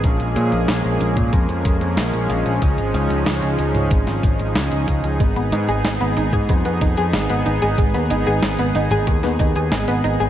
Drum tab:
HH |xxxxxxxxxxxxxxxx|xxxxxxxxxxxxxxxx|xxxxxxxxxxxxxxxx|xxxxxxxxxxxxxxxx|
SD |----o-------o---|----o----o--o---|----o-------o---|----o----o--o---|
T2 |-------o--------|-------o--------|-------o--------|-------o--------|
BD |o------oo-o-----|o-------o-o---o-|o------oo-o-----|o-------o-o-----|